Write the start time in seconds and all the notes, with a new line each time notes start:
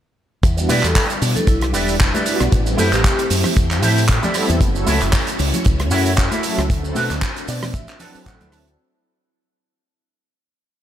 0.43 E2 G3 D4 E4 B4, kick, closed hi-hat, shaker
0.57 G3 B3 D4 E4 F#4, muted clean electric guitar stroke, shaker
0.69 B2 E4 G4 B4 D5, open hi-hat, high conga, shaker
0.83 E2 A4, clap, closed hi-hat, shaker
0.95 muted clean electric guitar stroke, kick, clap, open hi-hat, shaker
1.10 closed hi-hat, shaker
1.22 B2, open hi-hat, shaker
1.36 A4, closed hi-hat, high conga, low conga, shaker
1.47 B1 E4, kick, closed hi-hat, shaker
1.61 cross-stick, closed hi-hat
1.73 E1 E4 G4 B4 D5, open hi-hat, shaker
1.88 shaker
2.00 kick, clap, closed hi-hat, shaker
2.13 E4 G4 B4 D5, closed hi-hat, high conga, shaker
2.26 G3 B3 D4 E4 F#4, open hi-hat, shaker
2.40 B1, cross-stick, closed hi-hat, shaker
2.52 A1 A3 C4 G4, kick, closed hi-hat, shaker
2.66 G3 B3 C4 E4 A4, muted clean electric guitar stroke, shaker
2.77 F#2 E4 G4 A4 C5, open hi-hat, high conga, shaker
2.93 A1 G4, clap, closed hi-hat, shaker
3.04 kick, clap, closed hi-hat, shaker
3.19 closed hi-hat, shaker
3.30 F#2, open hi-hat, shaker
3.44 cross-stick, open hi-hat, high conga, low conga, shaker
3.57 E2, kick, closed hi-hat, shaker
3.71 clap, closed hi-hat, shaker
3.82 A2 E4 G4 A4 C5, open hi-hat, low conga, shaker
3.98 shaker
4.09 kick, clap, closed hi-hat, shaker
4.22 E4 G4 A4 D5, closed hi-hat, high conga, low conga, shaker
4.34 G3 B3 C4 E4 A4, cross-stick, open hi-hat, shaker
4.49 E2, closed hi-hat, shaker
4.60 F#1 A3 C#4 E4 F#4, kick, closed hi-hat, shaker
4.75 F#3 A3 C#4 E4 A4, muted clean electric guitar stroke, shaker
4.86 C#2 E4 F#4 A4 C#5, open hi-hat, high conga, shaker
5.01 F#1, clap, closed hi-hat, shaker
5.12 muted clean electric guitar stroke, kick, clap, open hi-hat, shaker
5.27 closed hi-hat, shaker
5.39 C#2, open hi-hat, shaker
5.54 closed hi-hat, high conga, low conga, shaker
5.65 C#2, kick, closed hi-hat, shaker
5.80 cross-stick, closed hi-hat
5.91 F#2 E4 F#4 A4 C#5, open hi-hat, shaker
6.06 shaker
6.17 kick, clap, closed hi-hat, shaker
6.31 E4 F#4 A4 E5, closed hi-hat, high conga, shaker
6.43 F#3 A3 C#4 E4 A4, open hi-hat, shaker
6.58 C#2, cross-stick, closed hi-hat, shaker
6.69 D2 C4 D4, kick, closed hi-hat, shaker
6.83 F#3 C4 D4 E4 A4, muted clean electric guitar stroke, shaker
6.95 B2 D4 F#4 A4 B4, open hi-hat, high conga, shaker
7.10 D2, clap, closed hi-hat, shaker
7.21 kick, clap, closed hi-hat, shaker
7.36 closed hi-hat, shaker
7.48 B2 D5, open hi-hat, shaker
7.62 cross-stick, open hi-hat, high conga, low conga, shaker
7.74 A1 E5, kick, closed hi-hat, shaker
7.88 clap, closed hi-hat, shaker
8.00 F#3 C4 D4 E4 F#4 A4 B4 D5, open hi-hat, low conga, shaker
8.15 muted fingered electric bass stroke, shaker
8.26 A1 F#5, kick, clap, shaker
8.40 D2 F#3 C4 D4 E4 F#4 A4 B4, closed hi-hat, high conga, low conga, shaker
8.52 A5, cross-stick, open hi-hat, shaker
8.67 closed hi-hat, shaker